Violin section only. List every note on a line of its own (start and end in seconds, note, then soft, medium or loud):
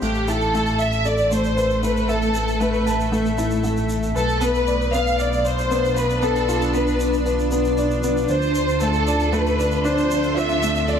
0.03 0.27 G4 medium
0.28 0.80 A4 medium
0.80 1.06 E5 medium
1.06 1.32 D5 medium
1.32 1.83 C5 medium
1.83 2.07 B4 medium
2.09 2.61 A4 medium
2.61 3.13 B4 medium
4.16 4.40 A4 medium
4.42 4.94 B4 medium
4.93 5.19 F5 medium
5.20 5.45 D5 medium
5.46 5.97 C5 medium
5.97 6.23 B4 medium
6.23 6.75 A4 medium
6.75 7.27 B4 medium
8.30 8.78 C5 medium
8.81 9.33 A4 medium
9.33 9.85 B4 medium
9.85 10.37 C5 medium
10.37 10.88 E5 medium
10.88 10.99 D5 medium